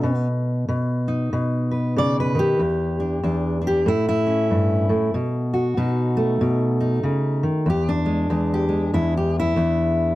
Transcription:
0.00 0.68 B2 medium
0.00 0.26 D#4 medium
0.69 1.32 B2 medium
1.08 2.57 D#4 soft
1.33 2.57 B2 medium
1.71 1.96 B4 soft
1.96 2.35 C#3 medium
1.96 2.18 D5 loud
2.20 2.61 B4 medium
2.35 2.59 D#3 medium
2.39 3.66 G4 medium
2.59 3.22 E2 medium
3.00 3.22 D4 soft
3.23 3.87 E2 medium
3.23 3.60 D4 soft
3.62 3.83 D4 soft
3.67 3.87 G4 medium
3.86 4.88 A2 medium
3.86 4.07 E4 medium
4.09 5.14 E4 loud
4.27 5.11 C#4 soft
4.51 4.89 G2 medium
4.89 5.14 A2 medium
5.14 5.76 B2 medium
5.54 7.65 F#4 medium
5.77 6.40 B2 medium
5.77 6.79 D#4 medium
6.17 7.65 A3 medium
6.41 7.03 B2 medium
6.81 7.65 D#4 medium
7.03 7.42 C#3 medium
7.43 7.68 D#3 medium
7.66 8.29 E2 medium
7.66 7.90 G4 medium
7.89 9.15 D4 medium
8.06 8.29 G#3 soft
8.30 8.92 E2 medium
8.30 8.68 G#3 soft
8.54 8.94 G4 medium
8.69 10.15 G#3 soft
8.94 9.55 E2 medium
8.94 9.15 E4 medium
9.17 9.37 G4 medium
9.40 10.15 E4 medium
9.56 10.15 E2 medium
9.56 10.15 D4 soft

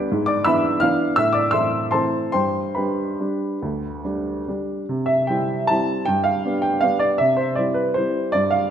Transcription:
0.00 0.11 D7 loud
0.11 0.45 G#2 medium
0.26 0.44 D5 medium
0.26 0.45 D6 medium
0.44 0.79 E3 soft
0.44 0.79 B3 soft
0.44 0.79 D4 medium
0.44 0.79 E5 medium
0.44 0.79 B5 medium
0.44 0.81 E6 medium
0.80 1.14 E3 soft
0.80 1.15 B3 soft
0.80 1.15 D4 medium
0.80 1.15 F5 medium
0.80 1.17 F6 medium
1.16 1.53 A2 medium
1.16 1.34 E5 medium
1.16 1.34 E6 loud
1.33 1.52 D5 medium
1.33 1.52 D6 medium
1.51 1.90 E3 soft
1.51 1.90 A3 soft
1.51 1.90 C4 soft
1.51 1.90 E5 medium
1.51 1.89 C6 medium
1.51 1.93 E6 medium
1.91 2.31 E3 soft
1.91 2.31 A3 soft
1.91 2.31 C4 soft
1.91 2.31 C5 medium
1.91 2.31 A5 medium
1.91 2.31 C6 medium
2.32 2.76 G2 soft
2.32 2.73 C5 medium
2.32 2.73 G5 medium
2.32 2.76 C6 medium
2.75 3.16 G3 soft
2.75 3.16 D4 soft
2.75 4.42 B4 soft
2.75 4.42 G5 soft
2.75 4.46 B5 medium
3.20 3.58 G3 soft
3.20 3.58 D4 soft
3.62 4.03 D2 soft
4.05 4.43 G3 soft
4.05 4.43 D4 soft
4.48 4.85 G3 soft
4.48 4.85 D4 soft
4.89 5.27 C3 medium
5.06 5.27 E5 medium
5.27 5.65 G3 soft
5.27 5.65 C4 soft
5.27 5.65 E4 soft
5.27 5.68 G5 medium
5.67 6.04 G3 soft
5.67 6.04 C4 soft
5.67 6.04 E4 soft
5.67 6.06 A5 medium
6.05 6.44 G2 medium
6.05 6.25 G5 medium
6.24 6.63 F5 medium
6.45 6.79 G3 soft
6.45 6.79 B3 soft
6.45 6.80 D4 soft
6.62 6.82 G5 medium
6.81 7.17 G3 soft
6.81 7.17 B3 soft
6.81 7.17 D4 soft
6.81 7.01 F5 medium
6.99 7.19 D5 medium
7.18 7.57 C3 medium
7.18 7.38 E5 medium
7.37 7.57 C5 medium
7.55 7.92 G3 soft
7.55 7.92 C4 soft
7.55 7.93 E4 soft
7.55 7.76 D5 medium
7.74 7.95 B4 medium
7.94 8.30 G3 soft
7.94 8.31 C4 soft
7.94 8.31 E4 soft
7.94 8.33 C5 medium
8.32 8.70 G2 medium
8.32 8.51 D5 medium
8.51 8.70 F5 medium

